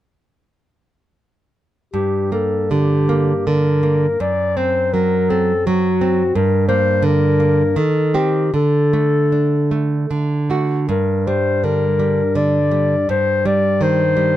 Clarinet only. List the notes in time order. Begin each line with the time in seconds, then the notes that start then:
1.93 G4
2.33 A4
2.71 G4
3.47 A#4
4.21 D5
4.57 C5
4.93 A#4
5.30 A4
5.66 F#4
6.35 A#4
6.68 C5
7.05 A#4
7.78 A4
8.15 G4
8.54 A4
10.90 A#4
11.27 C5
11.64 A#4
12.36 D5
13.10 C5
13.46 D5
13.83 C5